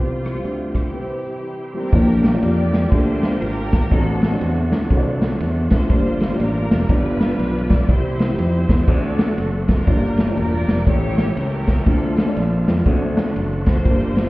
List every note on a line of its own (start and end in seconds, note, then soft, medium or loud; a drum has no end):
0.00 0.37 C2 medium
0.00 0.71 C3 medium
0.00 0.92 F3 medium
0.00 0.93 F3 medium
0.00 0.23 G3 medium
0.00 0.92 G3 soft
0.00 1.90 G3 medium
0.00 0.23 C4 medium
0.00 0.74 C4 medium
0.00 0.91 C4 medium
0.00 1.91 C4 medium
0.00 0.23 F4 medium
0.00 0.71 F4 medium
0.00 0.90 F4 medium
0.00 0.92 G4 medium
0.00 0.24 C5 medium
0.25 cross-stick loud
0.25 closed hi-hat medium
0.34 0.92 G3 medium
0.34 0.92 C4 medium
0.34 0.93 F4 medium
0.34 0.93 C5 medium
0.44 0.86 D2 medium
0.44 closed hi-hat medium
0.75 1.70 C4 medium
0.75 1.71 E4 medium
0.75 1.74 G4 medium
0.75 kick medium
0.75 cross-stick loud
0.75 closed hi-hat medium
0.93 1.70 C3 medium
0.93 1.01 D3 soft
0.93 1.92 E3 medium
0.93 1.56 G3 medium
0.93 1.91 G3 medium
0.93 1.56 C4 medium
0.93 1.91 C4 medium
0.93 1.92 E4 medium
0.93 1.56 E4 medium
0.93 1.91 G4 medium
0.93 1.01 B4 medium
1.00 1.94 E3 medium
1.00 1.59 C5 medium
1.44 1.73 G5 medium
1.74 1.85 G3 medium
1.74 1.86 C4 medium
1.74 2.70 D4 medium
1.74 1.86 E4 medium
1.74 1.86 G4 medium
1.74 2.42 G4 medium
1.74 2.39 A#4 medium
1.74 1.92 C5 medium
1.92 2.35 A#1 loud
1.92 2.70 A#2 medium
1.92 3.87 F3 medium
1.92 3.87 G3 medium
1.92 2.21 A#3 medium
1.92 3.88 A#3 medium
1.92 2.22 D4 medium
1.92 3.87 D4 medium
1.92 2.22 F4 medium
1.92 2.01 F#4 medium
1.92 2.22 G4 medium
1.92 2.22 D5 medium
1.92 kick loud
1.92 crash medium
1.99 3.91 G4 medium
2.23 snare loud
2.23 ride bell medium
2.33 2.74 A#3 medium
2.33 2.75 D4 medium
2.33 2.75 F4 medium
2.33 2.75 G4 medium
2.33 2.75 D5 medium
2.42 2.85 F2 loud
2.42 2.92 F4 medium
2.42 2.92 G4 medium
2.42 2.92 D5 loud
2.42 ride bell medium
2.74 snare loud
2.74 ride bell medium
2.92 3.34 D2 loud
2.92 3.56 A#3 medium
2.92 3.56 D4 medium
2.92 3.56 F4 medium
2.92 3.88 F4 medium
2.92 3.56 G4 medium
2.92 3.42 G4 medium
2.92 3.56 A4 medium
2.92 3.42 C5 loud
2.92 kick loud
2.92 ride bell medium
3.23 snare loud
3.23 ride bell medium
3.42 3.84 G#1 medium
3.42 3.88 D4 medium
3.42 3.88 G4 medium
3.42 3.92 A#4 loud
3.42 ride bell medium
3.72 kick loud
3.72 snare loud
3.72 ride bell medium
3.91 4.34 A1 loud
3.91 4.68 A2 medium
3.91 5.86 D3 medium
3.91 5.86 F#3 medium
3.91 5.86 A3 medium
3.91 4.20 C4 medium
3.91 5.86 C4 medium
3.91 4.87 C4 medium
3.91 4.20 D4 medium
3.91 3.99 E4 medium
3.91 4.20 F#4 medium
3.91 4.87 F#4 medium
3.91 4.20 A4 medium
3.91 4.41 A4 medium
3.91 4.20 D5 medium
3.91 kick loud
3.91 ride bell medium
3.98 5.89 F#4 medium
4.22 snare loud
4.22 ride bell medium
4.31 4.72 C4 medium
4.31 4.72 D4 medium
4.31 4.73 F#4 medium
4.31 4.73 A4 medium
4.31 4.73 D5 medium
4.41 4.72 E2 loud
4.41 ride bell medium
4.72 4.88 D2 loud
4.72 snare loud
4.72 ride bell medium
4.90 5.33 C2 medium
4.90 5.54 C4 medium
4.90 5.54 D4 medium
4.90 5.55 F#4 medium
4.90 5.55 A4 medium
4.90 4.98 C#5 medium
4.90 kick loud
4.90 ride bell medium
4.97 5.58 D5 loud
5.22 snare loud
5.22 ride bell medium
5.40 5.67 E2 medium
5.40 ride bell medium
5.70 5.87 D2 medium
5.70 6.39 F4 medium
5.70 6.36 C5 loud
5.70 kick loud
5.70 snare loud
5.70 ride bell medium
5.90 6.32 G1 loud
5.90 6.67 G2 medium
5.90 6.88 D3 medium
5.90 6.88 F3 medium
5.90 6.88 G3 medium
5.90 5.98 A3 soft
5.90 6.19 A#3 medium
5.90 6.19 D4 medium
5.90 6.19 F4 medium
5.90 6.88 F4 medium
5.90 6.19 G4 medium
5.90 6.19 D5 medium
5.90 kick loud
5.90 ride bell medium
5.97 6.91 A#3 medium
6.20 snare loud
6.20 ride bell medium
6.30 6.71 A#3 medium
6.30 6.71 D4 medium
6.30 6.71 F4 medium
6.30 6.71 G4 medium
6.30 6.35 C#5 medium
6.37 6.66 A1 loud
6.37 6.86 D4 medium
6.37 6.86 F4 medium
6.37 6.86 A#4 medium
6.37 6.75 D5 medium
6.37 ride bell medium
6.71 6.87 F1 loud
6.71 snare loud
6.71 ride bell medium
6.89 7.31 G1 medium
6.89 7.66 G2 medium
6.89 7.87 D3 medium
6.89 7.87 F3 medium
6.89 7.87 G3 medium
6.89 7.53 B3 medium
6.89 7.87 B3 medium
6.89 7.53 D4 medium
6.89 7.85 D4 medium
6.89 7.87 F4 medium
6.89 7.53 F4 medium
6.89 7.85 F4 medium
6.89 7.53 G4 medium
6.89 7.70 B4 loud
6.89 7.54 D5 medium
6.89 kick loud
6.89 ride bell medium
7.20 snare loud
7.20 ride bell medium
7.39 7.81 B1 medium
7.39 ride bell medium
7.70 7.89 D5 loud
7.70 kick loud
7.70 snare loud
7.70 ride bell medium
7.89 8.31 C2 loud
7.89 8.66 C3 medium
7.89 8.87 G3 medium
7.89 8.86 C4 medium
7.89 8.17 E4 medium
7.89 8.87 E4 medium
7.89 8.38 E4 medium
7.89 8.18 G4 medium
7.89 8.38 G4 medium
7.89 8.38 C5 loud
7.89 8.18 C5 medium
7.89 kick loud
7.89 ride bell medium
8.19 snare loud
8.19 ride bell medium
8.29 8.70 E4 medium
8.29 8.70 G4 medium
8.29 8.34 A#4 medium
8.36 8.65 F2 loud
8.36 8.85 E4 medium
8.36 8.85 G4 medium
8.36 8.74 C5 medium
8.36 8.85 C5 loud
8.36 ride bell medium
8.69 8.85 E2 loud
8.69 kick loud
8.69 snare loud
8.69 ride bell medium
8.87 9.30 D2 loud
8.87 9.65 D3 medium
8.87 9.85 D3 medium
8.87 9.86 F#3 medium
8.87 9.85 A3 medium
8.87 9.52 C4 medium
8.87 9.85 C4 medium
8.87 9.52 D4 medium
8.87 8.95 E4 medium
8.87 9.52 F#4 medium
8.87 9.84 F#4 medium
8.87 9.52 A4 medium
8.87 9.84 A4 medium
8.87 9.38 D5 loud
8.87 9.52 D5 medium
8.87 kick loud
8.87 ride bell medium
8.94 9.89 F#4 medium
9.19 snare loud
9.19 ride bell medium
9.38 9.80 F#1 medium
9.38 ride bell medium
9.68 10.65 D4 medium
9.68 10.37 F4 medium
9.68 10.34 A#4 loud
9.68 kick medium
9.68 snare loud
9.68 ride bell medium
9.87 10.30 G1 loud
9.87 10.65 G2 medium
9.87 10.85 F3 medium
9.87 10.85 G3 medium
9.87 10.16 A#3 medium
9.87 10.85 A#3 medium
9.87 10.16 D4 medium
9.87 10.85 D4 medium
9.87 10.16 F4 medium
9.87 10.85 G4 medium
9.87 10.17 G4 medium
9.87 10.17 D5 medium
9.87 kick loud
9.87 ride bell medium
10.17 snare loud
10.17 ride bell medium
10.27 10.32 A3 medium
10.27 10.69 D4 medium
10.27 10.69 F4 medium
10.27 10.69 G4 medium
10.27 10.70 D5 medium
10.33 10.72 A#3 medium
10.33 ride bell medium
10.37 10.64 E1 loud
10.37 10.84 F4 medium
10.37 10.84 A#4 medium
10.37 10.85 D5 loud
10.68 10.84 F1 medium
10.68 snare loud
10.68 ride bell medium
10.87 11.29 A1 loud
10.87 11.64 A2 medium
10.87 11.85 E3 medium
10.87 11.85 G3 medium
10.87 11.51 A3 medium
10.87 11.85 A3 medium
10.87 11.51 C#4 medium
10.87 11.85 C#4 medium
10.87 11.51 E4 medium
10.87 11.83 E4 medium
10.87 11.51 G4 medium
10.87 11.85 G4 medium
10.87 11.37 G4 medium
10.87 11.37 C#5 loud
10.87 11.51 C#5 medium
10.87 kick loud
10.87 ride bell medium
11.18 snare loud
11.18 ride bell medium
11.37 11.79 C#2 medium
11.37 11.84 C#4 medium
11.37 11.84 G4 medium
11.37 11.87 A#4 medium
11.37 ride bell medium
11.67 kick loud
11.67 snare loud
11.67 ride bell medium
11.86 12.29 D2 loud
11.86 12.63 D3 medium
11.86 12.84 D3 medium
11.86 12.84 F3 medium
11.86 12.15 A3 medium
11.86 12.84 A3 medium
11.86 12.15 C4 medium
11.86 12.84 C4 medium
11.86 12.83 C4 medium
11.86 12.15 D4 medium
11.86 12.15 F4 medium
11.86 12.84 F4 medium
11.86 12.83 F4 medium
11.86 12.37 A4 medium
11.86 12.15 C5 medium
11.86 kick loud
11.86 ride bell medium
12.17 snare loud
12.17 ride bell medium
12.26 12.68 A3 medium
12.26 12.68 C4 medium
12.26 12.68 D4 medium
12.26 12.68 F4 medium
12.26 12.68 D5 medium
12.37 12.63 A#1 loud
12.37 ride bell medium
12.68 12.83 F2 loud
12.68 snare loud
12.68 ride bell medium
12.86 13.28 D2 loud
12.86 13.84 D3 medium
12.86 13.63 D3 medium
12.86 13.84 F#3 medium
12.86 13.50 A3 medium
12.86 13.84 A3 medium
12.86 13.50 C4 medium
12.86 13.84 C4 medium
12.86 13.50 D4 medium
12.86 12.94 F4 medium
12.86 13.50 F#4 medium
12.86 13.50 C5 medium
12.86 kick loud
12.86 ride bell medium
12.92 13.87 F#4 medium
13.17 snare loud
13.17 ride bell medium
13.36 13.78 F#1 loud
13.36 ride bell medium
13.66 14.29 F4 medium
13.66 14.29 C5 loud
13.66 kick loud
13.66 snare loud
13.66 ride bell medium
13.85 14.29 G1 loud
13.85 14.29 G2 medium
13.85 14.29 F3 medium
13.85 14.14 G3 medium
13.85 14.29 G3 medium
13.85 14.14 A#3 medium
13.85 14.29 A#3 medium
13.85 14.29 D4 medium
13.85 14.15 D4 medium
13.85 14.15 F4 medium
13.85 14.29 G4 medium
13.85 14.15 A#4 medium
13.85 kick loud
13.85 ride bell medium
14.16 snare loud
14.16 ride bell medium
14.25 14.29 G3 medium
14.25 14.29 A#3 medium
14.25 14.29 D4 medium
14.25 14.29 F4 medium